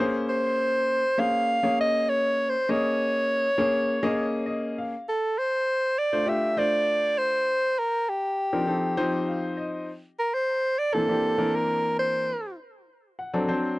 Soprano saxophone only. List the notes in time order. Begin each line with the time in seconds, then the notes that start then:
0.29 C5
1.19 F5
1.80 D#5
2.09 C#5
2.49 C5
2.71 C#5
5.09 A4
5.38 C5
5.98 D5
6.28 E5
6.58 D5
7.18 C5
7.79 A#4
8.09 G4
10.19 A#4
10.34 C5
10.78 D5
10.93 A4
11.55 A#4
11.99 C5